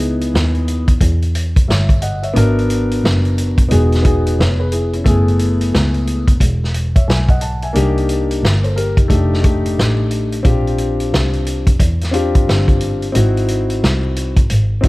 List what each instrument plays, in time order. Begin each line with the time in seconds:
Already playing: double bass C#2, grand piano B3 D#4 E4 G#4
0.00 closed hi-hat
0.21 closed hi-hat
0.34 double bass D#2, snare
0.55 closed hi-hat
0.68 closed hi-hat
0.88 double bass E2, kick, closed hi-hat
1.01 double bass E2, kick, closed hi-hat
1.22 closed hi-hat
1.35 closed hi-hat
1.56 kick, closed hi-hat
1.68 double bass G1, grand piano C#5 E5, snare
1.89 kick, closed hi-hat
2.02 grand piano D#5 F#5, closed hi-hat
2.23 grand piano C#5 E5, closed hi-hat
2.34 double bass G#1, grand piano B3 D4 F#4 A#4, closed hi-hat
2.59 closed hi-hat
2.70 closed hi-hat
2.91 closed hi-hat
3.03 double bass F#1, snare
3.25 closed hi-hat
3.38 closed hi-hat
3.58 double bass E1, kick, closed hi-hat
3.69 double bass E1, grand piano B3 D#4 F#4 G#4, closed hi-hat
3.92 snare, closed hi-hat
4.02 grand piano B3 D#4 F#4 G#4, kick, closed hi-hat
4.26 closed hi-hat
4.38 double bass F1, grand piano C#5, snare
4.60 grand piano G#4 B4
4.72 grand piano E4 G#4, closed hi-hat
4.93 grand piano C#4 E4, closed hi-hat
5.04 double bass F#1, grand piano A3 B3 E4 G#4, kick, closed hi-hat
5.28 closed hi-hat
5.39 closed hi-hat
5.61 closed hi-hat
5.74 double bass C#2, snare
5.94 closed hi-hat
6.07 closed hi-hat
6.27 double bass E1, kick, closed hi-hat
6.40 double bass E1, kick, closed hi-hat
6.64 snare
6.74 closed hi-hat
6.95 grand piano C#5 E5, kick, closed hi-hat
7.08 double bass B1, grand piano E5 G#5, snare
7.29 grand piano D#5 F#5, kick, closed hi-hat
7.41 grand piano F#5 A5, closed hi-hat
7.62 grand piano E5 G#5, closed hi-hat
7.73 double bass C2, grand piano A#3 D4 D#4 G4, closed hi-hat
7.98 closed hi-hat
8.09 closed hi-hat
8.31 closed hi-hat
8.43 double bass G1, snare
8.64 grand piano A4 C5, closed hi-hat
8.76 grand piano G4 A#4, closed hi-hat
8.97 double bass F1, grand piano D#4 G4, kick, closed hi-hat
9.08 double bass F1, grand piano A3 D4 D#4 G4, kick, closed hi-hat
9.33 snare
9.41 grand piano A3 D4 D#4 G4, kick, closed hi-hat
9.66 closed hi-hat
9.78 double bass A1, snare
10.11 closed hi-hat
10.32 closed hi-hat
10.43 double bass A#1, grand piano C4 D4 F4 G4, kick, closed hi-hat
10.67 closed hi-hat
10.78 closed hi-hat
11.00 closed hi-hat
11.13 double bass C2, snare
11.33 closed hi-hat
11.47 closed hi-hat
11.67 double bass E2, kick, closed hi-hat
11.80 double bass E2, kick, closed hi-hat
12.01 snare, closed hi-hat
12.11 grand piano C4 D4 F4 G4, closed hi-hat
12.35 double bass G1, kick, closed hi-hat
12.48 double bass G1, snare
12.68 kick, closed hi-hat
12.81 closed hi-hat
13.02 closed hi-hat
13.12 double bass G#1, grand piano C4 D#4 E4 F#4, closed hi-hat
13.37 closed hi-hat
13.48 closed hi-hat
13.70 closed hi-hat
13.83 double bass C2, snare
14.16 closed hi-hat
14.37 double bass G#1, kick, closed hi-hat
14.50 double bass G#1, closed hi-hat
14.81 grand piano C4 D#4 E4 F#4, kick, closed hi-hat